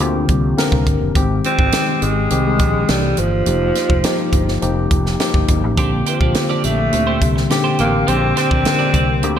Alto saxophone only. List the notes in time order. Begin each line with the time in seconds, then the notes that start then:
Already playing: F3
1.45 C4
2.02 G#3
2.89 G3
3.19 F3
6.08 F3
6.65 A3
7.80 A#3
8.08 C4
8.37 C4